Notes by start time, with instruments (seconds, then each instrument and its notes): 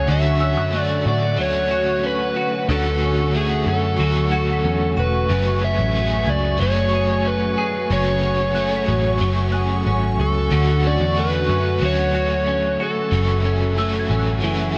Already playing: clean electric guitar F#3 A3 C#4 G#4, overdriven electric guitar G#4, electric slide guitar C#5, analog synth pad F#5, marimba C#6 E6 F#6
0.07 picked electric bass D2, overdriven electric guitar D3 F#3 A3 C#4 F#4, clean electric guitar D3, analog synth pad F#4 C#6, electric slide guitar E5
0.40 clean electric guitar C#4, marimba E6
0.57 picked electric bass F#2
0.72 overdriven electric guitar F#3 A3, clean electric guitar A3
0.77 overdriven electric guitar F#4
0.81 electric slide guitar D5
1.06 picked electric bass A2, electric slide guitar D5
1.36 picked electric bass D2, overdriven electric guitar F#3 A3, clean electric guitar F#3
1.41 overdriven electric guitar C#4 F#4, electric slide guitar C#5
1.71 clean electric guitar F#4
2.03 clean electric guitar C#4, electric slide guitar B4
2.36 clean electric guitar F#4
2.69 picked electric bass D2, overdriven electric guitar D3 F#3 A3 C#4 F#4, clean electric guitar D3, electric slide guitar A4
3.02 clean electric guitar C#4
3.33 overdriven electric guitar F#3 A3 C#4, clean electric guitar A3, electric slide guitar G#4
3.37 overdriven electric guitar F#4
3.66 picked electric bass F#2, clean electric guitar C#4, electric slide guitar A4, marimba C#6
3.97 picked electric bass D2, overdriven electric guitar F#3 A3, clean electric guitar F#3
4.03 overdriven electric guitar C#4 F#4
4.32 clean electric guitar F#4, marimba G#6
4.53 marimba B6
4.65 picked electric bass E2, clean electric guitar C#4
4.97 picked electric bass E1, clean electric guitar F#4, electric slide guitar B4
5.29 picked electric bass F#1, overdriven electric guitar F#2 C#3 F#3 A3 C#4 G#4, clean electric guitar F#2, analog synth pad A3 G#5
5.62 clean electric guitar C#4, electric slide guitar E5
5.79 picked electric bass A1
5.94 overdriven electric guitar F#3 A3, clean electric guitar A3
5.98 overdriven electric guitar G#4
6.27 picked electric bass C#2, electric slide guitar D5, marimba G#6
6.58 picked electric bass F#1, overdriven electric guitar F#3 A3, clean electric guitar F#3
6.62 overdriven electric guitar C#4, electric slide guitar C#5
6.67 overdriven electric guitar G#4
6.93 clean electric guitar G#4
7.25 clean electric guitar C#4, electric slide guitar B4
7.58 clean electric guitar G#4
7.90 picked electric bass F#1, overdriven electric guitar F#2 C#3 F#3 A3 C#4 G#4, clean electric guitar F#2, electric slide guitar C#5
8.23 clean electric guitar C#4
8.55 overdriven electric guitar F#3 A3 C#4, clean electric guitar A3, marimba F#6
8.59 overdriven electric guitar G#4
8.76 marimba B6
8.88 picked electric bass A1, clean electric guitar C#4
9.18 picked electric bass F#1, overdriven electric guitar F#3 A3, clean electric guitar F#3
9.25 overdriven electric guitar C#4
9.52 clean electric guitar G#4, marimba F#6
9.87 picked electric bass G#1, clean electric guitar C#4
10.19 picked electric bass C#2, electric slide guitar A4, marimba C#6
10.51 picked electric bass D2, overdriven electric guitar D3 F#3 A3 F#4, clean electric guitar D3, analog synth pad F#5
10.84 clean electric guitar C#4, electric slide guitar D5
11.00 picked electric bass E2
11.15 overdriven electric guitar F#3 A3 C#4, clean electric guitar A3
11.20 overdriven electric guitar F#4, electric slide guitar B4
11.49 picked electric bass F#2, clean electric guitar C#4, marimba C#6
11.79 picked electric bass D2, overdriven electric guitar F#3 A3, clean electric guitar F#3
11.85 overdriven electric guitar C#4 F#4, electric slide guitar C#5
12.15 clean electric guitar F#4, marimba F#6
12.47 clean electric guitar C#4
12.80 clean electric guitar F#4, electric slide guitar A4
13.12 picked electric bass F#1, overdriven electric guitar F#2 C#3 E3 A3 C#4 F#4, clean electric guitar F#2, analog synth pad E5
13.45 clean electric guitar C#4
13.77 overdriven electric guitar E3 A3 C#4, clean electric guitar A3, marimba E6
13.81 overdriven electric guitar F#4
13.99 marimba G#6
14.10 picked electric bass A1, clean electric guitar C#4
14.19 marimba F#6
14.40 picked electric bass F#1, overdriven electric guitar E3 A3, clean electric guitar E3, electric slide guitar G#4
14.47 overdriven electric guitar C#4 F#4